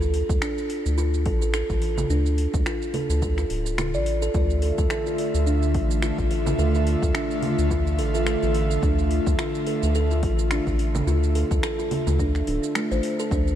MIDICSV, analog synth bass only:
0, 0, Header, 1, 2, 480
1, 0, Start_track
1, 0, Key_signature, -1, "minor"
1, 0, Tempo, 560748
1, 1799, Time_signature, 4, 2, 24, 8
1, 11601, End_track
2, 0, Start_track
2, 0, Title_t, "Analog synth bass"
2, 0, Program_c, 0, 38
2, 0, Note_on_c, 0, 38, 100
2, 198, Note_off_c, 0, 38, 0
2, 253, Note_on_c, 0, 38, 82
2, 331, Note_off_c, 0, 38, 0
2, 735, Note_on_c, 0, 38, 97
2, 1079, Note_on_c, 0, 33, 75
2, 1092, Note_off_c, 0, 38, 0
2, 1399, Note_off_c, 0, 33, 0
2, 1454, Note_on_c, 0, 33, 94
2, 1756, Note_off_c, 0, 33, 0
2, 1796, Note_on_c, 0, 38, 103
2, 2118, Note_off_c, 0, 38, 0
2, 2174, Note_on_c, 0, 38, 92
2, 2252, Note_off_c, 0, 38, 0
2, 2650, Note_on_c, 0, 38, 97
2, 2954, Note_off_c, 0, 38, 0
2, 2994, Note_on_c, 0, 26, 83
2, 3372, Note_on_c, 0, 33, 87
2, 3385, Note_off_c, 0, 26, 0
2, 3675, Note_off_c, 0, 33, 0
2, 3720, Note_on_c, 0, 38, 105
2, 4039, Note_off_c, 0, 38, 0
2, 4095, Note_on_c, 0, 38, 86
2, 4173, Note_off_c, 0, 38, 0
2, 4575, Note_on_c, 0, 38, 99
2, 4919, Note_on_c, 0, 33, 80
2, 4932, Note_off_c, 0, 38, 0
2, 5239, Note_off_c, 0, 33, 0
2, 5296, Note_on_c, 0, 33, 93
2, 5597, Note_off_c, 0, 33, 0
2, 5638, Note_on_c, 0, 38, 105
2, 5959, Note_off_c, 0, 38, 0
2, 6016, Note_on_c, 0, 38, 86
2, 6093, Note_off_c, 0, 38, 0
2, 6492, Note_on_c, 0, 38, 100
2, 6839, Note_on_c, 0, 33, 79
2, 6852, Note_off_c, 0, 38, 0
2, 7159, Note_off_c, 0, 33, 0
2, 7215, Note_on_c, 0, 33, 95
2, 7517, Note_off_c, 0, 33, 0
2, 7556, Note_on_c, 0, 38, 102
2, 7878, Note_off_c, 0, 38, 0
2, 7932, Note_on_c, 0, 38, 88
2, 8011, Note_off_c, 0, 38, 0
2, 8414, Note_on_c, 0, 38, 94
2, 8757, Note_on_c, 0, 33, 76
2, 8770, Note_off_c, 0, 38, 0
2, 9078, Note_off_c, 0, 33, 0
2, 9133, Note_on_c, 0, 33, 97
2, 9435, Note_off_c, 0, 33, 0
2, 9474, Note_on_c, 0, 38, 108
2, 9797, Note_off_c, 0, 38, 0
2, 9853, Note_on_c, 0, 38, 88
2, 9932, Note_off_c, 0, 38, 0
2, 10332, Note_on_c, 0, 38, 106
2, 10635, Note_off_c, 0, 38, 0
2, 10679, Note_on_c, 0, 26, 97
2, 10780, Note_off_c, 0, 26, 0
2, 11054, Note_on_c, 0, 33, 94
2, 11132, Note_off_c, 0, 33, 0
2, 11397, Note_on_c, 0, 38, 107
2, 11601, Note_off_c, 0, 38, 0
2, 11601, End_track
0, 0, End_of_file